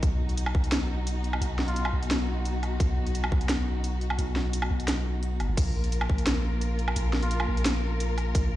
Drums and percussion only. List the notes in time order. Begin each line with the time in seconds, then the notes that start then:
0.03 kick, closed hi-hat
0.29 closed hi-hat
0.37 closed hi-hat
0.46 low woodblock
0.55 kick
0.64 closed hi-hat
0.72 snare, closed hi-hat
1.07 closed hi-hat
1.24 closed hi-hat
1.33 low woodblock
1.42 closed hi-hat
1.59 snare
1.68 closed hi-hat
1.76 closed hi-hat
1.85 low woodblock
2.03 closed hi-hat
2.11 snare, closed hi-hat
2.45 closed hi-hat
2.63 closed hi-hat, low woodblock
2.80 kick, closed hi-hat
3.07 closed hi-hat
3.15 closed hi-hat
3.24 low woodblock
3.32 kick
3.41 closed hi-hat
3.49 snare, closed hi-hat
3.84 closed hi-hat
4.01 closed hi-hat
4.10 low woodblock
4.19 closed hi-hat
4.36 snare
4.53 closed hi-hat
4.62 low woodblock
4.80 closed hi-hat
4.88 snare, closed hi-hat
5.23 closed hi-hat
5.40 closed hi-hat, low woodblock
5.57 kick, closed hi-hat, crash
5.84 closed hi-hat
5.92 closed hi-hat
6.01 low woodblock
6.10 kick
6.18 closed hi-hat
6.27 snare, closed hi-hat
6.61 closed hi-hat
6.79 closed hi-hat
6.88 low woodblock
6.96 closed hi-hat
7.13 snare
7.23 closed hi-hat
7.31 closed hi-hat
7.40 low woodblock
7.57 closed hi-hat
7.66 snare, closed hi-hat
8.00 closed hi-hat
8.18 closed hi-hat, low woodblock
8.35 kick, closed hi-hat